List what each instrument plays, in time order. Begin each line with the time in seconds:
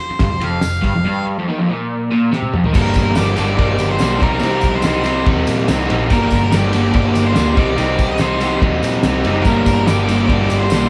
Already playing: lead electric guitar C5
0.10 muted picked electric bass stroke, muted overdriven electric guitar stroke
0.19 picked electric bass G1, overdriven electric guitar G2, kick, snare, ride
0.24 lead electric guitar C5
0.30 picked electric bass F1, overdriven electric guitar F2
0.41 picked electric bass F1, overdriven electric guitar F2, lead electric guitar F5, ride
0.61 picked electric bass F1, overdriven electric guitar F2, snare, ride, tambourine
0.82 picked electric bass G1, overdriven electric guitar G2, kick, ride
0.86 lead electric guitar F5
0.95 picked electric bass F1, overdriven electric guitar F2
1.05 overdriven electric guitar G2
1.39 overdriven electric guitar F2
1.48 overdriven electric guitar D#3
1.58 overdriven electric guitar F2
1.69 overdriven electric guitar A#2
2.11 overdriven electric guitar A#2
2.32 overdriven electric guitar C3, snare
2.43 high tom
2.53 overdriven electric guitar F2, mid tom
2.64 overdriven electric guitar D#3, floor tom
2.72 picked electric bass G1, overdriven electric guitar G2 D3 G3 A#3 D4, lead electric guitar A#4, kick, crash, tambourine
2.94 picked electric bass G1, kick, ride, tambourine
3.15 picked electric bass G1, overdriven electric guitar G2 D3 G3 A#3 D4, lead electric guitar D5, snare, ride, tambourine
3.36 picked electric bass G1, overdriven electric guitar G2 D3 G3 A#3 D4, ride, tambourine
3.56 picked electric bass G1, overdriven electric guitar G2 D3 G3 A#3 D4, lead electric guitar D5, kick, ride
3.78 picked electric bass G1, ride, tambourine
3.91 lead electric guitar C5
3.99 picked electric bass B1, overdriven electric guitar G2 D3 G3 A#3 D4, snare, ride, tambourine
4.19 picked electric bass C2, overdriven electric guitar C3 G3 C4 D#4, kick, ride, tambourine
4.23 lead electric guitar A#4
4.39 picked electric bass C2, overdriven electric guitar C3 G3 C4 D#4, ride, tambourine
4.61 picked electric bass C2, kick, ride, tambourine
4.75 lead electric guitar C5
4.82 picked electric bass C2, overdriven electric guitar C3 G3 C4 D#4, snare, ride, tambourine
4.87 lead electric guitar C5
5.03 overdriven electric guitar C3 G3 C4 D#4, ride, tambourine
5.25 picked electric bass D#2, overdriven electric guitar C3 G3 C4 D#4, kick, ride
5.47 picked electric bass A#2, ride, tambourine
5.67 picked electric bass C2, overdriven electric guitar C3 G3 C4 D#4, snare, ride, tambourine
5.89 picked electric bass A#1, overdriven electric guitar C3 G3 C4 D#4, ride, tambourine
6.09 picked electric bass G1, overdriven electric guitar G2 D3 G3 A#3 D4, lead electric guitar A#4, kick, ride, tambourine
6.30 picked electric bass G1, kick, ride, tambourine
6.52 picked electric bass G1, overdriven electric guitar G2 D3 G3 A#3 D4, lead electric guitar D5, snare, ride, tambourine
6.71 picked electric bass G1, overdriven electric guitar G2 D3 G3 A#3 D4, ride, tambourine
6.91 picked electric bass G1, overdriven electric guitar G2 D3 G3 A#3 D4, kick, ride
6.96 lead electric guitar D5
7.15 picked electric bass G1, ride, tambourine
7.26 lead electric guitar C5
7.34 picked electric bass D2, overdriven electric guitar G2 D3 G3 A#3 D4, snare, ride, tambourine
7.54 picked electric bass C2, overdriven electric guitar C3 G3 C4 D#4, kick, ride, tambourine
7.59 lead electric guitar D5
7.75 picked electric bass C2, overdriven electric guitar C3 G3 C4 D#4, ride, tambourine
7.99 picked electric bass C2, kick, ride, tambourine
8.11 lead electric guitar D#5
8.18 picked electric bass C2, overdriven electric guitar C3 G3 C4 D#4, lead electric guitar C5, snare, ride, tambourine
8.40 overdriven electric guitar C3 G3 C4 D#4, ride, tambourine
8.60 picked electric bass D#2, overdriven electric guitar C3 G3 C4 D#4, kick, ride
8.83 picked electric bass A#2, ride, tambourine
9.03 picked electric bass C2, overdriven electric guitar C3 G3 C4 D#4, snare, ride, tambourine
9.24 picked electric bass F#1, overdriven electric guitar C3 G3 C4 D#4, ride, tambourine
9.43 picked electric bass G1, overdriven electric guitar G2 D3 G3 A#3, lead electric guitar A#4, kick, tambourine, crash
9.47 overdriven electric guitar D4
9.66 picked electric bass G1, kick, ride, tambourine
9.86 picked electric bass G1, overdriven electric guitar G2 D3 G3 A#3, lead electric guitar D5, snare, ride, tambourine
9.91 overdriven electric guitar D4
10.07 picked electric bass G1, overdriven electric guitar G2 D3 G3 A#3 D4, ride, tambourine
10.25 overdriven electric guitar G2 D3 G3 A#3, lead electric guitar D5, kick
10.29 picked electric bass G1, overdriven electric guitar D4, ride
10.50 picked electric bass G1, ride, tambourine
10.59 lead electric guitar C5
10.70 picked electric bass B1, overdriven electric guitar G2 D3 G3 A#3 D4, snare, ride, tambourine